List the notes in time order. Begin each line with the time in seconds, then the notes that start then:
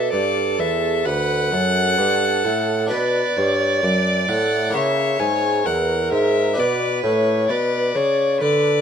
Already playing: B2 D4 F#4 A4 E5
0.12 G2 D5
0.59 E2 E5
1.05 D2 B4 F#5
1.51 F#2 A4
1.98 G2
2.45 A2
2.86 D4 F#4 B4 D5
2.91 B2
3.37 G2 C#5
3.83 F#2 D5
4.28 A2 F#5
4.69 A#3 E4 A#4
4.74 C#3 C#5 E5
5.20 G#2 G#5
5.66 E2 A#4 F#5
6.11 G#2 E5
6.53 D4 F#4 B4
6.57 B2 B4 D5
7.04 A2 C#5
7.49 B2 B4 D5
7.95 C#3 C#5
8.40 D3 B4 D5